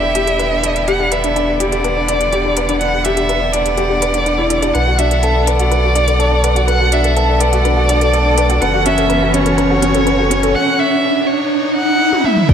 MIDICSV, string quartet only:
0, 0, Header, 1, 2, 480
1, 0, Start_track
1, 0, Tempo, 483871
1, 870, Time_signature, 4, 2, 24, 8
1, 12437, End_track
2, 0, Start_track
2, 0, Title_t, "String quartet"
2, 0, Program_c, 0, 48
2, 0, Note_on_c, 0, 50, 57
2, 0, Note_on_c, 0, 59, 52
2, 0, Note_on_c, 0, 64, 65
2, 0, Note_on_c, 0, 67, 67
2, 1636, Note_on_c, 0, 78, 73
2, 1773, Note_off_c, 0, 67, 0
2, 5584, Note_off_c, 0, 64, 0
2, 6433, Note_on_c, 0, 69, 70
2, 8549, Note_off_c, 0, 50, 0
2, 8552, Note_on_c, 0, 52, 83
2, 8666, Note_on_c, 0, 61, 74
2, 9970, Note_off_c, 0, 59, 0
2, 10467, Note_off_c, 0, 69, 0
2, 10469, Note_off_c, 0, 61, 0
2, 10471, Note_off_c, 0, 52, 0
2, 10473, Note_off_c, 0, 78, 0
2, 12437, End_track
0, 0, End_of_file